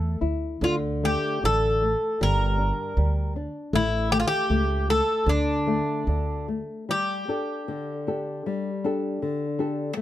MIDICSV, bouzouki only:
0, 0, Header, 1, 2, 480
1, 0, Start_track
1, 0, Tempo, 813008
1, 370, Time_signature, 2, 2, 24, 8
1, 847, Tempo, 765306
1, 3247, Tempo, 807537
1, 4687, Tempo, 766284
1, 6148, End_track
2, 0, Start_track
2, 0, Title_t, "Bouzouki"
2, 0, Program_c, 0, 25
2, 0, Note_on_c, 0, 69, 83
2, 107, Note_off_c, 0, 69, 0
2, 377, Note_on_c, 0, 65, 74
2, 441, Note_off_c, 0, 65, 0
2, 620, Note_on_c, 0, 67, 78
2, 855, Note_off_c, 0, 67, 0
2, 858, Note_on_c, 0, 69, 89
2, 1342, Note_off_c, 0, 69, 0
2, 1345, Note_on_c, 0, 70, 87
2, 2030, Note_off_c, 0, 70, 0
2, 2302, Note_on_c, 0, 64, 90
2, 2529, Note_off_c, 0, 64, 0
2, 2531, Note_on_c, 0, 67, 98
2, 2570, Note_off_c, 0, 67, 0
2, 2579, Note_on_c, 0, 65, 85
2, 2614, Note_off_c, 0, 65, 0
2, 2629, Note_on_c, 0, 67, 108
2, 3019, Note_off_c, 0, 67, 0
2, 3021, Note_on_c, 0, 69, 96
2, 3260, Note_off_c, 0, 69, 0
2, 3266, Note_on_c, 0, 62, 79
2, 3958, Note_off_c, 0, 62, 0
2, 4225, Note_on_c, 0, 67, 84
2, 5870, Note_off_c, 0, 67, 0
2, 6148, End_track
0, 0, End_of_file